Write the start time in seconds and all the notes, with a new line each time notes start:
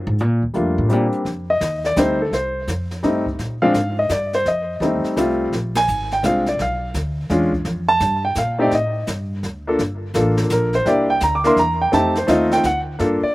0.07 G#2
0.18 A#2, closed hi-hat
0.42 D2
0.54 F2 G3 A3 A#3 D4 F4, closed hi-hat
0.78 A2
0.89 A#2 G3 A#3 C4 D4 G4, closed hi-hat
1.13 closed hi-hat
1.25 F2, brush sweep, snare
1.50 D#5
1.61 D#2, snare, hi-hat pedal
1.84 D5, snare
1.96 D2 G3 A3 C4 D#4 C5, snare, hi-hat pedal
2.22 A4
2.31 C2 C5, brush sweep, snare
2.67 F2, snare, hi-hat pedal
2.91 snare
3.03 G2 G3 A3 C4 D#4, snare
3.26 kick
3.39 A#2, brush sweep, snare
3.62 F3 G#3 C4 D4 F5
3.74 G#2, snare, hi-hat pedal
3.99 D#5
4.09 G2 D5, snare, hi-hat pedal
4.33 C5, snare
4.45 F2 D#5, brush sweep, snare
4.80 D#2 G3 A3 C4 D#4, snare
5.04 muted upright bass stroke, snare
5.16 C2 G3 A3 C4 F4, snare, hi-hat pedal
5.52 A#1, brush sweep, snare
5.75 G#5, snare, ride
5.88 G#1, hi-hat pedal
6.12 G5, snare
6.23 C2 G#3 C4 D4 F4 F5, snare, hi-hat pedal
6.46 D5, snare
6.59 B1 F5, brush sweep, snare
6.94 D2, snare, hi-hat pedal
7.30 E2 G#3 C#4 D4 F4, snare
7.52 kick
7.65 F2, brush sweep, snare
7.88 A5
8.00 G2, snare, hi-hat pedal
8.25 G5
8.35 A#2 F5, snare, hi-hat pedal
8.58 A3 C4 D#4 G4 D5
8.71 A2 D#5, brush sweep, snare
9.07 G2, snare, hi-hat pedal
9.43 D2, snare
9.67 A#3 D4 F4 A4
9.79 G1, brush sweep, snare
10.14 A1 A#3 D4 F4 A4, snare, hi-hat pedal
10.37 snare
10.50 A#1 A#4, snare, hi-hat pedal
10.73 C5, snare
10.85 C2 A#3 D4 E4 G4 D5, brush sweep, snare
11.10 G5
11.20 D2 A#5, snare, hi-hat pedal
11.35 D6
11.44 A#3 D4 E4 A#4 C6, snare
11.56 E2 A#5, snare
11.81 G5
11.92 F2 A3 C4 D#4 G4 A5, brush sweep, snare
12.15 C5, snare
12.27 D#2 A3 C4 D#4 F4 D#5, snare, hi-hat pedal
12.51 G5, snare
12.64 D2 F#5, snare, hi-hat pedal
12.99 G2 A#3 D4 F4 A4, brush sweep, snare
13.23 D5, muted upright bass stroke